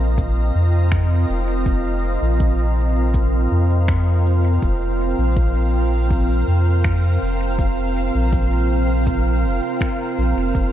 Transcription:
0.00 0.51 A#1 medium
0.00 10.72 C4 medium
0.00 10.72 F4 medium
0.00 10.72 A#4 medium
0.00 5.51 D#5 medium
0.18 kick medium
0.18 cabasa medium
0.55 1.25 F2 medium
0.92 finger snap medium
0.92 kick medium
0.92 cabasa medium
1.29 2.18 F1 medium
1.29 cabasa soft
1.66 kick loud
1.66 cabasa medium
2.21 3.48 A#1 medium
2.40 kick loud
2.40 cabasa medium
3.14 kick loud
3.14 cabasa medium
3.51 4.59 F2 medium
3.88 finger snap medium
3.88 kick loud
3.88 cabasa medium
4.26 cabasa soft
4.62 5.14 F1 medium
4.62 kick medium
4.62 cabasa medium
5.18 6.44 A#1 medium
5.29 10.72 F5 medium
5.36 kick loud
5.36 cabasa medium
6.11 kick loud
6.11 cabasa medium
6.47 7.18 F2 medium
6.84 finger snap medium
6.84 kick loud
6.84 cabasa medium
7.22 8.11 F1 medium
7.22 cabasa soft
7.59 kick loud
7.59 cabasa medium
8.14 9.45 A#1 loud
8.33 kick loud
8.33 cabasa medium
9.07 kick loud
9.07 cabasa medium
9.44 9.60 F1 medium
9.81 finger snap medium
9.81 kick loud
9.81 cabasa medium
10.18 10.34 A#1 medium
10.18 cabasa soft
10.36 10.53 F1 medium
10.55 10.72 F1 medium
10.55 kick loud
10.55 cabasa medium

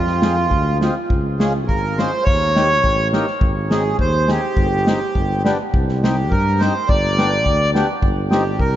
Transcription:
0.00 0.53 F2 medium
0.00 0.78 F4 medium
0.07 snare soft
0.22 0.35 G#3 medium
0.22 0.35 C4 soft
0.22 0.35 F4 medium
0.22 snare medium
0.51 0.89 D2 medium
0.51 kick medium
0.81 0.94 G#3 medium
0.81 0.94 C4 medium
0.81 0.94 F4 medium
0.81 snare medium
1.10 1.70 C#2 medium
1.10 kick medium
1.40 1.53 G#3 soft
1.40 1.53 C#4 soft
1.40 1.53 F4 medium
1.40 1.53 G#4 medium
1.40 snare medium
1.68 2.06 G#1 medium
1.68 1.99 A#4 medium
1.68 kick medium
1.97 2.11 G#3 medium
1.97 2.11 C#4 medium
1.97 2.11 F4 medium
1.97 2.24 C5 medium
1.97 snare medium
2.24 2.86 D#2 medium
2.24 3.08 C#5 loud
2.24 kick medium
2.56 2.68 A#3 medium
2.56 2.68 D#4 soft
2.56 2.68 G4 medium
2.56 snare medium
2.84 3.21 A1 medium
2.84 kick medium
3.13 3.26 A#3 medium
3.13 3.25 D#4 medium
3.13 3.26 G4 medium
3.13 snare medium
3.27 snare soft
3.41 4.01 G#1 medium
3.41 kick medium
3.71 3.83 C4 medium
3.71 3.83 D#4 medium
3.71 3.83 G#4 medium
3.71 3.97 G#4 medium
3.71 snare medium
3.99 4.36 D#2 medium
3.99 4.30 C5 loud
3.99 kick medium
4.28 4.41 C4 medium
4.28 4.41 D#4 medium
4.28 5.42 G4 medium
4.28 4.41 G#4 medium
4.28 snare medium
4.57 4.95 G1 medium
4.57 kick medium
4.86 4.99 C4 medium
4.86 4.99 D#4 soft
4.86 4.99 G4 medium
4.86 snare medium
5.15 5.53 G1 medium
5.15 kick medium
5.45 5.58 B3 medium
5.45 5.58 D4 medium
5.45 5.58 G4 medium
5.45 snare medium
5.74 6.33 C2 medium
5.74 kick medium
5.89 snare soft
6.03 6.16 C4 medium
6.03 6.16 D#4 soft
6.03 6.32 G4 medium
6.03 6.16 G4 medium
6.03 snare medium
6.30 6.69 G2 medium
6.30 6.61 A#4 medium
6.30 kick medium
6.59 6.73 C4 medium
6.59 6.73 D#4 medium
6.59 6.74 G4 medium
6.59 6.89 C5 medium
6.59 snare medium
6.88 7.48 G1 medium
6.88 7.71 D5 loud
6.88 kick medium
7.04 snare soft
7.18 7.30 B3 medium
7.18 7.30 D4 soft
7.18 7.31 G4 medium
7.18 snare medium
7.46 7.83 D2 medium
7.46 kick medium
7.74 7.87 B3 medium
7.74 7.87 D4 medium
7.74 7.87 G4 medium
7.74 snare medium
8.02 8.61 G1 medium
8.02 kick medium
8.31 8.44 C4 medium
8.31 8.44 D#4 soft
8.31 8.44 G4 medium
8.31 8.60 G4 medium
8.31 snare medium
8.59 8.76 C2 medium
8.59 8.76 A#4 medium
8.59 kick medium

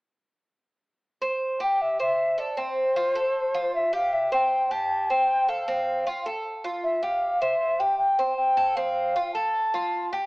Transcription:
1.22 1.59 C5 medium
1.60 1.98 G4 medium
1.60 1.83 G5 medium
1.81 2.00 E5 medium
2.00 2.37 C5 medium
2.00 2.41 E5 medium
2.38 2.57 A4 medium
2.38 2.60 D5 medium
2.57 2.95 C4 medium
2.57 3.74 C5 medium
2.96 3.15 F4 medium
3.15 3.53 A4 medium
3.54 3.92 F4 medium
3.75 3.92 E5 medium
3.93 4.31 G4 medium
3.93 4.14 F5 medium
4.13 4.32 E5 medium
4.32 4.70 C5 medium
4.32 4.73 G5 loud
4.71 5.09 G4 medium
4.71 5.12 A5 loud
5.10 5.47 C5 medium
5.10 5.51 G5 loud
5.48 5.67 A4 medium
5.48 6.26 F5 medium
5.68 6.05 C4 medium
6.07 6.25 F4 medium
6.26 6.63 A4 medium
6.64 7.02 F4 medium
6.83 7.04 E5 medium
7.03 7.40 G4 medium
7.03 7.42 F5 medium
7.41 7.79 C5 medium
7.41 7.81 E5 medium
7.79 8.18 G4 medium
7.79 7.97 G5 medium
7.98 8.35 G5 medium
8.19 8.57 C5 medium
8.36 8.77 G5 medium
8.57 8.76 A4 medium
8.75 9.15 C4 medium
8.75 9.33 F5 loud
9.16 9.35 F4 medium
9.34 9.73 A4 medium
9.34 10.08 A5 medium
9.74 10.12 F4 medium
10.13 10.26 G4 medium

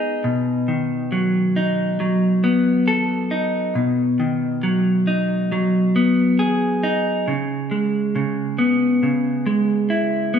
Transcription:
0.00 0.24 G#3 medium
0.00 2.42 B3 medium
0.00 1.56 D#4 soft
0.00 0.24 G#4 medium
0.24 2.44 B2 medium
0.68 2.88 D#3 soft
1.12 1.99 F#3 medium
1.56 3.30 D#4 soft
2.00 3.76 F#3 soft
2.44 5.94 B3 medium
2.88 3.76 A4 medium
3.31 3.76 D#4 soft
3.75 5.95 B2 medium
4.20 6.40 D#3 soft
4.63 5.51 F#3 medium
5.07 6.82 D#4 soft
5.52 7.28 F#3 medium
5.96 7.31 B3 medium
6.39 9.89 G#4 medium
6.83 7.28 D#4 medium
7.28 8.14 C#3 medium
7.71 9.45 G#3 soft
8.16 9.02 C#3 medium
8.59 10.33 B3 soft
9.03 10.39 C#3 medium
9.46 10.39 G#3 medium
9.90 10.39 E4 medium
10.34 10.39 B3 medium

